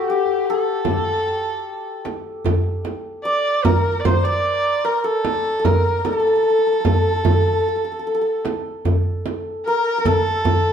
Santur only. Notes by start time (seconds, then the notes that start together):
Already playing: F#4 A4 C5
0.10 G4
0.50 A4
3.25 D5
3.65 A#4
4.05 C5
4.25 D5
4.85 A#4
5.04 A4
5.59 A4
5.65 A#4
6.05 A4
6.12 A4
6.20 A4
6.27 A4
6.36 A4
6.43 A4
6.50 A4
6.58 A4
6.67 A4
6.73 A4
6.80 A4
6.88 A4
6.94 A4
7.02 A4
7.09 A4
7.16 A4
7.24 A4
7.32 A4
7.41 A4
7.46 A4
7.53 A4
7.60 A4
7.68 A4
7.76 A4
7.85 A4
7.92 A4
7.99 A4
8.07 A4
8.15 A4
8.21 A4
9.67 A#4
9.98 A#4
10.06 A4